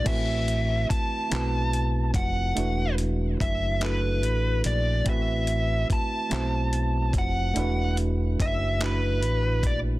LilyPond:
<<
  \new Staff \with { instrumentName = "Lead electric guitar" } { \time 6/8 \key a \dorian \tempo 4. = 48 e''4 a''4. fis''8~ | fis''8 r8 e''8 b'4 d''8 | e''4 a''4. fis''8~ | fis''8 r8 e''8 b'4 d''8 | }
  \new Staff \with { instrumentName = "Tine electric piano" } { \time 6/8 \key a \dorian <a c' e' fis' b'>4 r8 <a c' e' fis' b'>4 r8 | <a d' e' fis' b'>4 r8 <a d' e' fis' a'>4 r8 | <a c' e' fis' b'>4 r8 <a c' e' fis' c''>4 r8 | <a d' e' fis' b'>4 r8 <a d' e' fis' b'>4 r8 | }
  \new Staff \with { instrumentName = "Fingered electric bass" } { \clef bass \time 6/8 \key a \dorian a,,4 r8 b,,4 f,,8 | e,,4 fis,,4 a,,8 bes,,8 | a,,4 r8 b,,4 f,,8 | e,,4 fis,,4 a,,8 bes,,8 | }
  \new DrumStaff \with { instrumentName = "Drums" } \drummode { \time 6/8 <cymc hh bd>8 hh8 <hh bd>8 <hc hh>8 hh8 <hh bd>8 | hh8 hh8 <hh bd>8 <hc hh>8 hh8 hh8 | <hh bd>8 hh8 <hh bd>8 <hc hh>8 hh8 <hh bd>8 | hh8 hh8 <hh bd>8 <hc hh>8 hh8 <hh bd>8 | }
>>